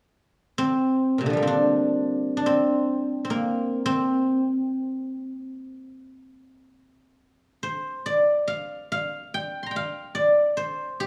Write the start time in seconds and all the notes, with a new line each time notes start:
0.58 C4
1.18 A#2 C3
1.26 D3 F3
1.33 G3 A#3
1.42 C4
1.47 D4
2.37 D4
2.46 C4
3.25 C4
3.30 A#3
3.86 C4
7.63 C5
8.06 D5
8.48 F5
8.92 F5
9.34 G5
9.63 A#5 C6
9.71 G5
9.76 F5
10.15 D5
10.57 C5
11.00 G4